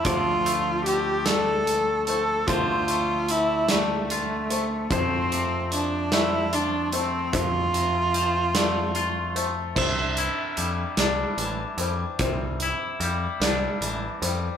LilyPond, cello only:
\new Staff \with { instrumentName = "Cello" } { \time 6/8 \key c \major \tempo 4. = 49 f'4 g'8 a'4 a'8 | f'4 e'8 a4. | c'4 d'8 e'8 d'8 c'8 | f'2~ f'8 r8 |
r2. | r2. | }